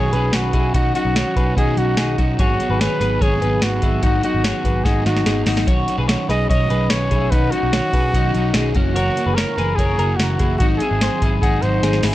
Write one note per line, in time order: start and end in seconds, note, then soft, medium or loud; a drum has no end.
0.00 0.13 B2 medium
0.00 0.13 D#3 medium
0.00 0.13 F#3 medium
0.00 0.12 C#4 medium
0.00 0.11 D#4 medium
0.00 0.13 F#4 medium
0.00 0.36 G#4 medium
0.00 0.12 C#5 medium
0.12 0.30 B1 medium
0.12 0.32 F#3 soft
0.12 0.33 C#4 soft
0.12 0.33 D#4 soft
0.12 0.52 G#4 medium
0.12 0.51 B4 medium
0.12 closed hi-hat medium
0.33 0.51 B1 medium
0.33 0.54 D#3 soft
0.33 0.54 F#3 medium
0.33 0.53 C#4 medium
0.33 0.52 D#4 medium
0.33 0.74 F#4 medium
0.33 snare loud
0.33 closed hi-hat medium
0.53 0.71 B1 medium
0.53 0.74 F#3 soft
0.53 0.74 C#4 soft
0.53 0.74 D#4 soft
0.53 0.75 E4 medium
0.53 0.74 G#4 medium
0.53 kick medium
0.53 closed hi-hat medium
0.74 0.91 B1 medium
0.74 0.95 B2 medium
0.74 0.95 D#3 medium
0.74 0.95 F#3 medium
0.74 0.95 C#4 medium
0.74 0.95 D#4 medium
0.74 0.94 D#4 medium
0.74 0.94 F#4 medium
0.74 kick loud
0.74 closed hi-hat medium
0.95 1.15 F#3 soft
0.95 1.15 C#4 soft
0.95 1.16 D#4 soft
0.95 1.16 D#4 medium
0.95 1.15 F#4 medium
0.95 1.53 F#4 medium
0.95 closed hi-hat medium
1.05 1.22 B1 medium
1.15 1.36 D#3 medium
1.15 1.36 F#3 medium
1.15 1.36 C#4 medium
1.15 1.35 D#4 medium
1.15 1.37 F#4 medium
1.15 1.36 C#5 medium
1.15 snare medium
1.15 closed hi-hat medium
1.36 1.53 B1 medium
1.36 1.56 F#3 soft
1.36 1.57 C#4 soft
1.36 1.57 D#4 soft
1.36 1.56 G#4 medium
1.36 1.57 B4 medium
1.36 kick medium
1.36 closed hi-hat medium
1.56 1.74 B1 medium
1.56 1.77 B2 medium
1.56 1.78 D#3 medium
1.56 1.78 F#3 medium
1.56 1.77 C#4 medium
1.56 1.96 D#4 medium
1.56 1.76 D#4 medium
1.56 1.95 F#4 medium
1.56 1.80 G#4 medium
1.56 kick medium
1.56 closed hi-hat medium
1.77 1.94 B1 medium
1.77 1.98 F#3 soft
1.77 1.98 C#4 soft
1.77 1.97 D#4 soft
1.77 2.19 F#4 medium
1.77 closed hi-hat medium
1.97 2.14 B1 medium
1.97 2.18 D#3 soft
1.97 2.19 F#3 medium
1.97 2.18 C#4 medium
1.97 2.18 D#4 medium
1.97 2.16 D#4 medium
1.97 2.18 G#4 medium
1.97 snare loud
1.97 closed hi-hat medium
2.18 2.35 B1 medium
2.18 2.39 F#3 soft
2.18 2.39 C#4 soft
2.18 2.38 D#4 soft
2.18 2.39 D#4 medium
2.18 2.39 F#4 medium
2.18 kick medium
2.18 closed hi-hat medium
2.39 2.56 G#1 loud
2.39 2.60 G#2 medium
2.39 2.60 D#3 medium
2.39 2.60 F#3 medium
2.39 2.59 B3 medium
2.39 2.58 D#4 medium
2.39 2.82 F#4 medium
2.39 2.68 G#4 medium
2.39 2.68 C#5 loud
2.39 kick loud
2.39 closed hi-hat medium
2.59 2.80 F#3 soft
2.59 2.80 B3 soft
2.59 2.80 D#4 soft
2.59 closed hi-hat medium
2.70 2.87 G#1 medium
2.70 2.80 G#4 medium
2.70 2.80 B4 medium
2.81 3.01 D#3 medium
2.81 3.01 F#3 medium
2.81 3.00 B3 medium
2.81 2.99 D#4 medium
2.81 3.00 G#4 medium
2.81 3.24 B4 medium
2.81 3.00 C#5 medium
2.81 snare loud
2.81 closed hi-hat medium
3.00 3.17 G#1 medium
3.00 3.21 F#3 soft
3.00 3.21 B3 soft
3.00 3.21 D#4 soft
3.00 3.21 G#4 medium
3.00 3.21 B4 medium
3.00 snare soft
3.00 closed hi-hat medium
3.21 3.38 G#1 medium
3.21 3.42 G#2 medium
3.21 3.42 D#3 medium
3.21 3.42 F#3 medium
3.21 3.42 B3 medium
3.21 3.41 D#4 medium
3.21 3.64 G#4 medium
3.21 3.41 G#4 medium
3.21 3.41 C#5 medium
3.21 kick medium
3.21 closed hi-hat medium
3.42 3.59 G#1 medium
3.42 3.62 F#3 soft
3.42 3.62 B3 soft
3.42 3.62 D#4 soft
3.42 3.81 G#4 medium
3.42 3.80 B4 medium
3.42 closed hi-hat medium
3.62 3.79 G#1 medium
3.62 3.82 D#3 soft
3.62 3.83 F#3 medium
3.62 3.82 B3 medium
3.62 3.81 D#4 medium
3.62 4.04 F#4 medium
3.62 snare loud
3.62 closed hi-hat medium
3.82 4.00 G#1 loud
3.82 4.02 F#3 soft
3.82 4.03 B3 soft
3.82 4.02 D#4 soft
3.82 4.03 E4 medium
3.82 4.03 G#4 medium
3.82 kick medium
3.82 closed hi-hat medium
4.02 4.20 G#1 loud
4.02 4.23 G#2 medium
4.02 4.23 D#3 medium
4.02 4.24 F#3 medium
4.02 4.23 B3 medium
4.02 4.23 D#4 medium
4.02 4.22 D#4 medium
4.02 4.22 F#4 medium
4.02 4.23 F#4 medium
4.02 kick medium
4.02 closed hi-hat medium
4.23 4.44 F#3 soft
4.23 4.44 B3 soft
4.23 4.44 D#4 soft
4.23 4.45 D#4 medium
4.23 4.44 F#4 medium
4.23 4.86 F#4 medium
4.23 closed hi-hat medium
4.34 4.51 G#1 medium
4.44 4.65 D#3 medium
4.44 4.65 F#3 medium
4.44 4.64 B3 medium
4.44 4.63 D#4 medium
4.44 4.64 G#4 medium
4.44 4.64 C#5 medium
4.44 snare loud
4.44 closed hi-hat medium
4.64 4.81 G#1 medium
4.64 4.84 F#3 soft
4.64 4.85 B3 soft
4.64 4.85 D#4 soft
4.64 4.85 G#4 soft
4.64 4.85 B4 medium
4.64 kick medium
4.64 closed hi-hat medium
4.84 5.02 G#1 medium
4.84 5.06 G#2 medium
4.84 5.06 D#3 medium
4.84 5.06 F#3 medium
4.84 5.06 B3 medium
4.84 5.04 D#4 medium
4.84 5.24 D#4 medium
4.84 5.24 F#4 medium
4.84 5.05 G#4 medium
4.84 kick medium
4.84 snare medium
4.84 closed hi-hat medium
5.05 5.22 G#1 medium
5.05 5.25 F#3 soft
5.05 5.25 B3 soft
5.05 5.26 D#4 soft
5.05 5.44 F#4 medium
5.05 snare medium
5.05 closed hi-hat medium
5.17 snare medium
5.25 5.43 G#1 medium
5.25 5.46 D#3 soft
5.25 5.47 F#3 soft
5.25 5.46 B3 medium
5.25 5.47 D#4 soft
5.25 5.45 D#4 medium
5.25 5.47 G#4 medium
5.25 snare medium
5.25 closed hi-hat medium
5.46 5.64 G#1 loud
5.46 5.67 F#3 soft
5.46 5.68 B3 soft
5.46 5.67 D#4 soft
5.46 5.68 D#4 medium
5.46 5.67 F#4 medium
5.46 snare medium
5.46 open hi-hat medium
5.57 snare medium
5.67 5.84 B1 loud
5.67 5.88 B2 medium
5.67 5.88 D#3 medium
5.67 5.88 F#3 medium
5.67 5.87 C#4 medium
5.67 5.87 D#4 medium
5.67 5.97 F#4 medium
5.67 5.96 C#5 loud
5.67 kick loud
5.67 closed hi-hat medium
5.88 6.08 F#3 soft
5.88 6.09 C#4 soft
5.88 6.08 D#4 soft
5.88 closed hi-hat medium
5.98 6.15 B1 medium
5.98 6.09 G#4 medium
5.98 6.08 B4 medium
6.08 6.29 D#3 medium
6.08 6.29 F#3 medium
6.08 6.29 C#4 medium
6.08 6.28 D#4 medium
6.08 6.29 F#4 medium
6.08 6.29 C#5 medium
6.08 snare loud
6.08 closed hi-hat medium
6.29 6.46 B1 medium
6.29 6.49 F#3 soft
6.29 6.49 C#4 soft
6.29 6.50 D#4 soft
6.29 6.50 G#4 medium
6.29 6.49 B4 medium
6.29 6.49 D#5 medium
6.29 snare soft
6.29 closed hi-hat medium
6.49 6.66 B1 medium
6.49 6.70 B2 medium
6.49 6.70 D#3 medium
6.49 6.70 F#3 medium
6.49 6.70 C#4 medium
6.49 6.69 D#4 medium
6.49 6.70 F#4 medium
6.49 6.70 C#5 medium
6.49 6.92 D#5 loud
6.49 kick medium
6.49 closed hi-hat medium
6.70 6.87 B1 medium
6.70 6.91 F#3 soft
6.70 6.91 C#4 soft
6.70 6.91 D#4 medium
6.70 7.09 G#4 medium
6.70 7.09 B4 medium
6.70 closed hi-hat medium
6.90 7.08 B1 medium
6.90 7.12 D#3 soft
6.90 7.12 F#3 medium
6.90 7.12 C#4 medium
6.90 7.10 D#4 medium
6.90 7.32 C#5 medium
6.90 snare loud
6.90 closed hi-hat medium
7.11 7.28 B1 medium
7.11 7.32 F#3 soft
7.11 7.32 C#4 soft
7.11 7.32 D#4 medium
7.11 7.32 E4 medium
7.11 7.32 G#4 medium
7.11 kick medium
7.11 closed hi-hat medium
7.31 7.49 B1 loud
7.31 7.52 B2 medium
7.31 7.53 D#3 medium
7.31 7.53 F#3 medium
7.31 7.53 C#4 medium
7.31 7.52 D#4 medium
7.31 7.51 D#4 medium
7.31 7.51 F#4 medium
7.31 7.52 B4 medium
7.31 kick loud
7.31 closed hi-hat medium
7.51 7.73 F#3 soft
7.51 7.73 C#4 soft
7.51 7.73 D#4 soft
7.51 7.73 D#4 medium
7.51 8.75 F#4 loud
7.51 7.73 F#4 medium
7.51 closed hi-hat medium
7.63 7.80 B1 medium
7.73 7.93 D#3 medium
7.73 7.94 F#3 medium
7.73 7.93 C#4 medium
7.73 7.92 D#4 medium
7.73 7.94 F#4 medium
7.73 7.93 C#5 medium
7.73 snare loud
7.73 closed hi-hat medium
7.93 8.10 B1 medium
7.93 8.13 F#3 soft
7.93 8.13 C#4 soft
7.93 8.14 D#4 soft
7.93 8.14 G#4 soft
7.93 8.14 B4 medium
7.93 kick medium
7.93 closed hi-hat medium
8.13 8.31 B1 medium
8.13 8.34 B2 medium
8.13 8.34 D#3 medium
8.13 8.35 F#3 medium
8.13 8.34 C#4 medium
8.13 8.32 D#4 loud
8.13 8.53 D#4 medium
8.13 8.53 F#4 medium
8.13 kick medium
8.13 closed hi-hat medium
8.34 8.51 B1 medium
8.34 8.54 F#3 soft
8.34 8.55 C#4 soft
8.34 8.54 D#4 medium
8.34 closed hi-hat medium
8.54 8.71 B1 medium
8.54 8.75 D#3 medium
8.54 8.76 F#3 medium
8.54 8.76 C#4 medium
8.54 8.75 D#4 medium
8.54 8.76 G#4 medium
8.54 snare loud
8.54 closed hi-hat medium
8.75 9.09 F#1 loud
8.75 8.95 E3 soft
8.75 8.96 A#3 medium
8.75 8.96 C#4 medium
8.75 8.96 E4 medium
8.75 8.96 F#4 medium
8.75 kick medium
8.75 closed hi-hat medium
8.93 9.16 F#2 medium
8.93 9.17 C#3 medium
8.93 9.16 E3 medium
8.93 9.15 A#3 medium
8.93 9.14 E4 medium
8.93 9.36 F#4 medium
8.93 9.25 A#4 medium
8.93 9.25 C#5 loud
8.93 closed hi-hat loud
9.15 9.35 E3 soft
9.15 9.36 A#3 soft
9.15 9.36 E4 soft
9.15 closed hi-hat medium
9.26 9.43 F#1 loud
9.26 9.37 G#4 medium
9.26 9.37 B4 medium
9.35 9.57 C#3 medium
9.35 9.57 E3 medium
9.35 9.56 A#3 medium
9.35 9.55 E4 medium
9.35 9.77 A#4 medium
9.35 9.58 A#4 medium
9.35 9.57 C#5 medium
9.35 snare loud
9.35 closed hi-hat medium
9.56 9.74 F#1 medium
9.56 9.76 E3 soft
9.56 9.77 A#3 soft
9.56 9.77 E4 soft
9.56 9.79 G#4 medium
9.56 9.78 B4 medium
9.56 snare soft
9.56 closed hi-hat medium
9.76 9.95 F#1 medium
9.76 9.98 F#2 medium
9.76 9.98 C#3 medium
9.76 9.98 E3 medium
9.76 9.97 A#3 medium
9.76 9.96 E4 medium
9.76 10.18 G#4 medium
9.76 9.98 A#4 medium
9.76 9.98 C#5 medium
9.76 kick medium
9.76 closed hi-hat medium
9.97 10.15 F#1 medium
9.97 10.18 E3 soft
9.97 10.19 A#3 medium
9.97 10.18 E4 medium
9.97 10.38 F#4 soft
9.97 10.37 A#4 medium
9.97 closed hi-hat medium
10.16 10.36 F#1 medium
10.16 10.39 C#3 medium
10.16 10.40 E3 medium
10.16 10.40 A#3 medium
10.16 10.38 E4 medium
10.16 10.58 F#4 medium
10.16 snare loud
10.16 closed hi-hat medium
10.39 10.57 F#1 medium
10.39 10.60 E3 soft
10.39 10.60 A#3 soft
10.39 10.60 E4 soft
10.39 10.61 E4 soft
10.39 10.60 G#4 medium
10.39 kick medium
10.39 closed hi-hat medium
10.58 10.77 G#1 loud
10.58 10.80 G#2 medium
10.58 10.80 D#3 medium
10.58 10.81 F#3 medium
10.58 10.80 C4 medium
10.58 10.79 D#4 medium
10.58 10.81 D#4 medium
10.58 10.68 F#4 medium
10.58 10.81 F#4 medium
10.58 kick loud
10.58 closed hi-hat loud
10.78 11.01 C4 soft
10.78 11.01 D#4 soft
10.78 11.37 G#4 medium
10.78 11.01 G#4 medium
10.78 closed hi-hat medium
10.82 11.00 F#3 soft
10.82 11.02 E4 medium
10.91 11.08 G#1 loud
11.01 11.21 D#3 medium
11.01 11.22 F#3 medium
11.01 11.21 C4 medium
11.01 11.21 D#4 medium
11.01 11.22 G#4 medium
11.01 11.22 C5 medium
11.01 snare loud
11.01 closed hi-hat medium
11.22 11.39 G#1 medium
11.22 11.42 F#3 soft
11.22 11.42 C4 soft
11.22 11.42 D#4 soft
11.22 11.43 E4 medium
11.22 11.42 G#4 medium
11.22 kick medium
11.22 closed hi-hat medium
11.42 11.59 G#1 medium
11.42 11.63 G#2 medium
11.42 11.63 D#3 medium
11.42 11.63 F#3 medium
11.42 11.62 C4 medium
11.42 11.82 D#4 medium
11.42 11.60 D#4 medium
11.42 11.81 F#4 medium
11.42 11.63 G#4 medium
11.42 kick medium
11.42 closed hi-hat medium
11.61 11.80 G#1 medium
11.61 11.82 F#3 soft
11.61 11.83 C4 soft
11.61 11.83 D#4 soft
11.61 12.03 C5 medium
11.61 closed hi-hat medium
11.82 12.00 G#1 medium
11.82 12.03 D#3 medium
11.82 12.04 F#3 medium
11.82 12.03 C4 medium
11.82 12.04 D#4 soft
11.82 12.02 D#4 medium
11.82 12.03 G#4 medium
11.82 snare medium
11.82 closed hi-hat medium
11.93 snare medium
12.03 12.15 G#1 medium
12.03 12.15 F#3 soft
12.03 12.15 C4 soft
12.03 12.15 D#4 soft
12.03 12.15 E4 medium
12.03 12.15 G#4 medium
12.03 snare medium
12.03 open hi-hat medium